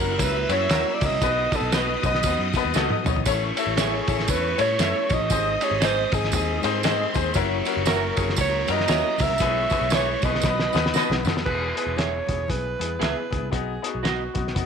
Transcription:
Already playing: F#3 A#3 C#4 E4 A#4 F#5 F#6
0.00 F#1 E4 F#4 A#4
0.18 C#2 C#4 E4 F#4 A#4 E5 E6, kick, ride, tambourine, high conga, low conga
0.23 B4
0.49 F#2 C#4 E4 F#4 C#5, ride, tambourine, high conga
0.53 C#5
0.69 D#2 C#4 E4 F#4 A#4 E5, snare, ride, tambourine, muted conga, high conga
0.94 D5
1.01 C#2 C#4 E4 F#4 A#4, kick, open hi-hat, ride, tambourine, muted conga, low conga
1.06 D#5
1.11 C2
1.21 B1 B3 D#4 F#4 B4 D#5 D#6, kick, hi-hat pedal, ride, tambourine
1.52 B3 D#4 F#4 B4, kick, ride, tambourine
1.56 A4
1.62 B1
1.72 B3 D#4 F#4 B4 D#5, snare, ride, tambourine, muted conga, high conga
2.03 B1 B3 D#4 F#4 B4 D#5, kick, ride, tambourine
2.15 snare
2.22 D#2 B3 D#4, kick, ride, tambourine, high conga, low conga
2.26 F#4 B4
2.39 F#2
2.53 B3 D#4 F#4, kick, ride, tambourine, high conga
2.57 B4
2.65 D#2
2.74 C#2 B3 D#4 F#4 A4 B4 D#5, snare, tambourine, muted conga, high conga
2.90 high tom
3.04 B1 B3 D#4 F#4 C#5, mid tom, tambourine, muted conga, low conga
3.16 A1, floor tom
3.25 A1 A3 C#4 E4 A4 C#5 C#6, kick, ride, tambourine
3.55 C#4 E4 A4 E5, ride, tambourine, muted conga
3.67 A1
3.77 C#4 E4 G#4 A4 C#5 E5, snare, ride, tambourine, high conga
4.08 A1 C#4 E4 A4 E5, kick, ride, tambourine
4.20 snare
4.28 E2 C#4 E4 A4 B4 C#5, kick, ride, tambourine, high conga, low conga
4.58 A2 C#4 E4 A4 C#5, ride, tambourine, high conga
4.79 F#2 C#4 E4 A4 C#5 E5, snare, ride, tambourine, high conga
5.09 A#1 C#4 E4 A4 C#5 D#5, kick, ride, tambourine, low conga
5.20 A1
5.28 G#1 G#3 C4 D#4 G#4 C5 D#5 D#6, kick, ride, tambourine
5.61 C4 D#4 G#4 C5 C#5, ride, tambourine
5.71 G#1
5.81 C4 D#4 G#4 C5 D#5, snare, ride, tambourine, high conga
5.85 C5
6.12 G#1 C4 D#4 G#4 D#5, kick, ride, tambourine, muted conga
6.24 snare
6.32 D#2 C4 D#4 G#4 D#5, kick, ride, tambourine, high conga, low conga
6.62 G#2 C4 D#4 G#4 C5 C6, ride, tambourine, high conga
6.83 C4 D#4 G#4 C5 D#5, snare, ride, tambourine, muted conga, high conga
7.14 D#2 C4 D#4 G#4 C5, kick, ride, tambourine, muted conga, low conga
7.34 F#1 F#3 A#3 C#4 E4 F#4 A#4 C#5 C#6, kick, ride, tambourine, muted conga
7.65 C#4 E4 F#4 A#4, ride, tambourine, muted conga
7.77 F#1
7.86 C#4 E4 F#4 A#4 E5, snare, ride, tambourine, high conga
8.16 F#1 C#4 E4 F#4 G#4, kick, ride, tambourine
8.29 snare
8.36 C#2 C#4 E4 F#4 A#4 C#5 A#5, kick, ride, tambourine, high conga, low conga
8.41 C#5
8.67 F#2 C#4 E4 F#4 A#4, ride, tambourine, high conga
8.72 D#5
8.80 snare
8.88 D#2 C#4 E4 F#4 A#4 C#5 E5, snare, ride, tambourine, muted conga, high conga
9.18 C#2 C#4 E4 F#4, kick, open hi-hat, ride, tambourine, muted conga, low conga
9.22 A#4 E5
9.30 C2
9.38 B1 G#3 B3 E4 G#4 B4 C#5 C#6, kick, hi-hat pedal, ride, tambourine
9.70 B3 E4 G#4 B4, kick, ride, tambourine
9.81 B1
9.90 B3 E4 G#4 B4 E5, snare, ride, tambourine, muted conga, high conga
9.95 B4 C#5
10.21 B1 B3 E4 G#4 D#5, kick, ride, tambourine, high conga
10.25 B4
10.35 snare
10.41 B1 F#3 B3 D#4 F#4 B4 B5, kick, snare, tambourine, high conga, low conga
10.46 B4
10.60 snare
10.72 D#2 B3 D#4 F#4 B4, snare, tambourine, high conga
10.86 snare
10.93 B3 D#4 F#4 B4 D#5, snare, tambourine, muted conga, high conga
11.10 B1, snare
11.23 F#2 B3 D#4 F#4 A4, snare, tambourine, muted conga, low conga
11.36 F2, snare
11.45 E1 B3 E4 G#4 B4, kick, crash
11.75 B3 E4 G#4 B4, closed hi-hat
11.86 E1
11.96 B3 E4 G#4 B4 C#5 E5, snare, closed hi-hat, high conga
12.27 E1 B3 E4 G#4, kick, closed hi-hat, muted conga, high conga
12.48 B1 B3 E4 G#4 B4, kick, closed hi-hat, high conga, low conga
12.79 E2 B3 E4 G#4, closed hi-hat, high conga
12.99 C#2 B3 E4 G#4 B4 E5, snare, closed hi-hat, high conga
13.30 C#2 B3 E4 G#4, kick, closed hi-hat, low conga
13.42 C2
13.50 B1 B3 D#4 F#4 G4 G#4, kick, closed hi-hat
13.82 B3 D#4 G#4, closed hi-hat
13.86 F#4
13.95 B1
14.02 B3 D#4 F#4 B4 D#5, snare, closed hi-hat, muted conga, high conga
14.34 B1 B3 D#4 F#4, kick, closed hi-hat, muted conga, high conga
14.48 snare
14.55 F#1 B3 D#4 F#4, kick, closed hi-hat, muted conga, high conga, low conga

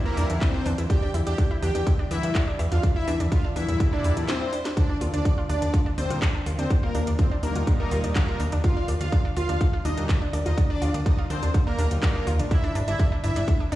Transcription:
Already playing: A#2 G3 E4
0.05 A#3 E4 A#4 E5
0.17 E2 D4 D5, open hi-hat
0.30 E2 A#2 G3 D4 E4 D5, closed hi-hat
0.41 C4 E4 C5 E5, kick, clap, closed hi-hat
0.54 D4 D5
0.66 E2 D4 D5, open hi-hat
0.78 E2 E4 E5, closed hi-hat
0.90 D4 G4 D5 G5, kick, closed hi-hat
1.02 D4 D5
1.14 E2 E4 E5, open hi-hat
1.27 E2 D4 G4 D5 G5, closed hi-hat
1.38 D4 D5, kick, closed hi-hat
1.51 E4 E5
1.62 E2 D4 G4 D5 G5, open hi-hat
1.75 E2 D4 D5, closed hi-hat
1.87 E4 E5, kick, closed hi-hat
1.99 D4 D5
2.11 E2 A#2 G3 D4 E4 D5 E5, open hi-hat
2.23 E2 E4 E5, closed hi-hat
2.35 D4 D5, kick, clap, closed hi-hat
2.48 D4 D5
2.59 E2 E4 E5, open hi-hat
2.72 E2 D4 F4 D5 F5, closed hi-hat
2.83 D4 D5, kick, closed hi-hat
2.96 E4 E5
3.08 E2 D4 D5, open hi-hat
3.20 E2 D4 D5, closed hi-hat
3.32 E4 F4 E5 F5, kick, closed hi-hat
3.44 D4 D5
3.56 E2 A#2 G3 D4 E4 D5 E5, open hi-hat
3.68 E2 E4 E5, closed hi-hat
3.80 D4 D5, kick, closed hi-hat
3.93 D4 D5
4.04 E1 E4 E5, open hi-hat
4.17 E2 A#2 G3 D4 E4 D5, closed hi-hat
4.29 C4 D4 C5 D5, snare, clap, closed hi-hat
4.41 E4 E5
4.53 D4 D5, open hi-hat
4.65 D4 D5, snare, closed hi-hat
4.77 D4 D5, kick, closed hi-hat
4.89 D4 D5
5.01 D#2 F4 F5, open hi-hat
5.14 D#2 D4 D5, closed hi-hat
5.25 D4 D5, kick, closed hi-hat
5.38 F4 F5
5.49 D#2 D4 D5, open hi-hat
5.62 D#2 D4 D5, closed hi-hat
5.74 F4 F5, kick, closed hi-hat
5.86 D4 D5
5.98 D#2 A#2 G3 C4 D4 D#4 C5 D5, open hi-hat
6.10 D#2 F4 F5, closed hi-hat
6.22 D4 D5, kick, clap, closed hi-hat
6.35 D4 D5
6.46 D#2 F4 F5, open hi-hat
6.59 D#2 C4 D4 C5 D5, closed hi-hat
6.70 D4 D5, kick, closed hi-hat
6.83 A#3 F4 A#4 F5
6.95 D#2 D4 D5, open hi-hat
7.07 D#2 D4 D5, closed hi-hat
7.19 C4 F4 C5 F5, kick, closed hi-hat
7.31 D4 D5
7.43 D#2 A#2 G3 A#3 D4 D#4 A#4 D5, open hi-hat
7.55 D#2 F4 F5, closed hi-hat
7.67 D4 D5, kick, closed hi-hat
7.80 A#3 D4 A#4 D5
7.91 D#2 F4 F5, open hi-hat
8.04 D#2 A#2 G3 D4 D#4 D5, closed hi-hat
8.16 A#3 D4 A#4 D5, kick, clap, closed hi-hat
8.28 F4 F5
8.40 D#2 D4 D5, open hi-hat
8.52 D#2 D4 D5, closed hi-hat
8.64 F4 F5, kick, closed hi-hat
8.77 D4 D5
8.88 D#2 D4 D5, open hi-hat
9.01 D#2 F4 F5, closed hi-hat
9.12 D4 D5, kick, closed hi-hat
9.25 D4 D5
9.37 D#2 F4 F5, open hi-hat
9.49 D#2 D4 D5, closed hi-hat
9.61 D4 D5, kick, closed hi-hat
9.73 F4 F5
9.85 D#2 A#2 G3 D4 D#4 D5 D#5, open hi-hat
9.97 D#2 D4 D5, closed hi-hat
10.09 F4 F5, kick, clap, closed hi-hat
10.22 D4 D5
10.33 D#2 D4 D5, open hi-hat
10.46 D#2 D#4 F4 D#5 F5, closed hi-hat
10.58 D4 D5, kick, closed hi-hat
10.70 D4 D5
10.82 D#2 F4 F5, open hi-hat
10.94 D#2 D4 D5, closed hi-hat
11.06 D4 D#4 D5 D#5, kick, closed hi-hat
11.18 F4 F5
11.30 D#2 C4 D4 C5 D5, open hi-hat
11.43 D#2 D4 D5, closed hi-hat
11.54 F4 F5, kick, closed hi-hat
11.67 A#3 D4 A#4 D5
11.79 D#1 A#2 G3 D4 D#4 D5, open hi-hat
11.91 D#2 A#2 G3 D#4 F4 F5, closed hi-hat
12.03 A#3 D4 A#4 D5, kick, clap, closed hi-hat
12.15 D4 D5
12.27 D#2 F4 F5, open hi-hat
12.39 A#1 D4 D5, closed hi-hat
12.51 D4 E4 D5 E5, kick, closed hi-hat
12.64 D4 D5
12.75 G1 D4 D5, open hi-hat
12.88 G1 D4 E4 D5 E5, closed hi-hat
12.99 D4 D5, kick, closed hi-hat
13.12 D4 D5
13.24 G1 D4 E4 D5 E5, open hi-hat
13.36 G1 D4 D5, closed hi-hat
13.48 D4 D5, kick, closed hi-hat
13.60 D4 D5
13.72 G1 A#2 A3 D4 G4 D5, open hi-hat

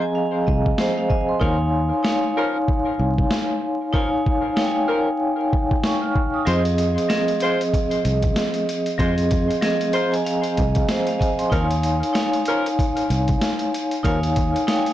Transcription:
Already playing: F3 C4 G#4 D#5 A#5
0.02 G#5
0.15 F5
0.47 C2 D#5, kick
0.66 kick
0.78 C5, snare
0.98 F5
1.10 D#5 G#5, kick
1.29 C6
1.40 D#2 F3 C#4 D#4 A#4 C#5 F5 G#5, kick
2.03 D#4 C#5 F5 G#5, snare
2.37 F3 C#4 A#4
2.68 kick
2.99 C2
3.18 kick
3.31 snare
3.93 F3 C#4 D#4 A#4 C#5 F5 G#5, kick
4.26 kick
4.56 D#4 C#5 F5 G5, snare
4.66 G#5
4.88 F3 C#4 A#4
5.53 kick
5.71 kick
5.83 C#6, snare
6.01 F6
6.15 kick
6.34 D#6
6.45 F2 F3 G#3 C4 F4 G#4 C5 D#5, closed hi-hat
6.65 closed hi-hat
6.78 closed hi-hat
6.98 closed hi-hat
7.08 F3 C4 G#4 D#5, snare, closed hi-hat
7.28 closed hi-hat
7.40 G#3 F4 C5, closed hi-hat
7.61 closed hi-hat
7.74 kick, closed hi-hat
7.91 closed hi-hat
8.05 C2, closed hi-hat
8.22 kick, closed hi-hat
8.36 snare, closed hi-hat
8.54 closed hi-hat
8.69 closed hi-hat
8.86 closed hi-hat
8.98 F2 F3 G#3 C4 F4 G#4 C5 D#5, kick, closed hi-hat
9.18 closed hi-hat
9.31 kick, closed hi-hat
9.51 closed hi-hat
9.61 F3 C4 G#4 D#5, snare, closed hi-hat
9.81 closed hi-hat
9.93 G#3 F4 C5 A#5, closed hi-hat
10.12 G#5, closed hi-hat
10.25 F5, closed hi-hat
10.44 closed hi-hat
10.57 C2 D#5, kick, closed hi-hat
10.75 kick, closed hi-hat
10.88 C5, snare, closed hi-hat
11.07 F5, closed hi-hat
11.19 D#5 G#5, kick, closed hi-hat
11.39 C6, closed hi-hat
11.50 D#2 F3 C#4 D#4 A#4 C#5 F5 G#5, kick, closed hi-hat
11.71 closed hi-hat
11.83 closed hi-hat
12.03 closed hi-hat
12.13 D#4 C#5 F5 G#5, snare, closed hi-hat
12.33 closed hi-hat
12.46 F3 C#4 A#4, closed hi-hat
12.66 closed hi-hat
12.79 kick, closed hi-hat
12.97 closed hi-hat
13.10 C2, closed hi-hat
13.28 kick, closed hi-hat
13.41 snare, closed hi-hat
13.59 closed hi-hat
13.74 closed hi-hat
13.91 closed hi-hat
14.03 D#2 F3 C#4 D#4 A#4 C#5 F5 G#5, kick, closed hi-hat
14.23 closed hi-hat
14.36 kick, closed hi-hat
14.56 closed hi-hat
14.67 D#4 C#5 F5 G5, snare, closed hi-hat
14.77 G#5
14.86 closed hi-hat

